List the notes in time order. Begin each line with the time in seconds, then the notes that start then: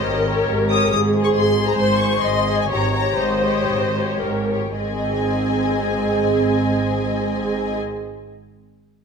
Already playing: G4 C#5 D#5
0.07 G#1 G#2 A#4
0.28 G4 C#5
0.49 G#1 G#2
0.69 G4 C#5 D#6
0.90 G#1 G#2 G#4 D#6
1.13 G#4 C5
1.25 C#6
1.33 G#1 G#2 C6
1.56 G#4 C5
1.69 A#5
1.77 G#1 G#2 C5 C6
2.00 G#4 C5 C#6
2.23 G#1 G#2 D#5 C6
2.47 G#4 C5
2.60 G#5
2.69 G#1 G#2 G4 C#5 A#5
2.94 G4 C#5 A#5
3.17 G#1 G#2 C5 D#5
3.42 G4 C#5
3.68 G#1 G#2
3.94 G4 C#5
4.21 G#1 G#2 A#4
4.51 G4 C#5
4.78 G#1 G#2 C4 G#4 D#5 G#5